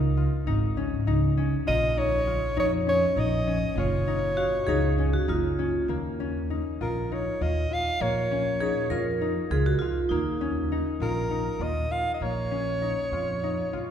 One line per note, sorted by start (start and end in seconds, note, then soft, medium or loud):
0.00 0.26 C#2 medium
0.00 0.77 C#4 medium
0.00 0.46 D#4 medium
0.00 0.17 F4 medium
0.17 1.66 F4 medium
0.47 0.93 G#1 medium
0.47 1.07 D#4 medium
0.77 1.37 C#4 medium
1.07 1.53 C#2 medium
1.07 1.97 D#4 medium
1.37 2.86 C#4 medium
1.67 2.37 A#1 medium
1.67 2.27 F4 medium
1.67 2.00 D#5 loud
1.97 2.56 D#4 medium
1.97 2.58 C#5 loud
2.27 3.77 F4 medium
2.57 3.03 F2 medium
2.57 3.17 D#4 medium
2.57 2.73 C#5 medium
2.87 3.47 C#4 medium
2.87 3.21 C#5 medium
3.16 3.62 A#1 medium
3.16 4.07 D#4 medium
3.16 3.78 D#5 medium
3.47 4.98 C#4 medium
3.75 4.46 F#1 medium
3.75 6.30 F4 medium
3.75 5.26 C#5 medium
4.07 4.68 D#4 medium
4.37 4.68 F#4 medium
4.37 6.04 F5 medium
4.67 5.14 C#2 medium
4.67 5.28 D#4 medium
4.67 5.14 G#4 medium
4.98 5.58 C#4 medium
5.13 5.27 F#4 medium
5.28 5.75 F#1 medium
5.28 6.50 D#4 medium
5.28 5.86 F4 medium
5.59 6.19 C#4 medium
5.88 6.59 D#2 medium
5.88 8.01 A#3 medium
6.20 8.31 C#4 medium
6.50 7.11 D#4 medium
6.81 7.27 A#1 medium
6.81 7.41 F4 medium
6.81 7.15 A#4 medium
7.12 8.61 D#4 medium
7.12 7.44 C#5 medium
7.41 7.64 D#2 medium
7.41 7.71 F4 medium
7.41 7.75 D#5 medium
7.71 8.91 F4 medium
7.71 8.03 F5 medium
8.01 8.70 A#1 medium
8.01 10.11 A#3 medium
8.01 9.22 C#5 medium
8.31 10.40 C#4 medium
8.60 9.21 D#4 medium
8.60 8.92 G#4 medium
8.90 9.37 F2 medium
8.90 9.51 F4 medium
8.90 9.53 A#4 medium
9.21 10.71 D#4 medium
9.50 9.74 C#2 medium
9.50 9.81 F4 medium
9.50 9.67 G#4 medium
9.66 9.80 F#4 medium
9.79 10.11 F4 medium
9.79 11.01 F4 medium
10.09 10.80 D#2 medium
10.09 12.21 A#3 medium
10.09 10.82 D#4 medium
10.41 12.51 C#4 medium
10.72 11.30 D#4 medium
11.00 11.47 A#1 medium
11.00 11.60 F4 medium
11.00 11.64 A#4 medium
11.31 12.81 D#4 medium
11.59 11.83 D#2 medium
11.59 11.91 F4 medium
11.59 11.93 D#5 medium
11.91 13.12 F4 medium
11.91 12.14 F5 medium
12.14 12.24 D#5 medium
12.21 12.91 A#1 medium
12.21 13.91 A#3 medium
12.21 13.91 C#5 medium
12.51 13.91 C#4 medium
12.82 13.43 D#4 medium
13.12 13.59 F2 medium
13.12 13.73 F4 medium
13.43 13.91 D#4 medium
13.73 13.91 A#1 medium
13.73 13.91 F4 medium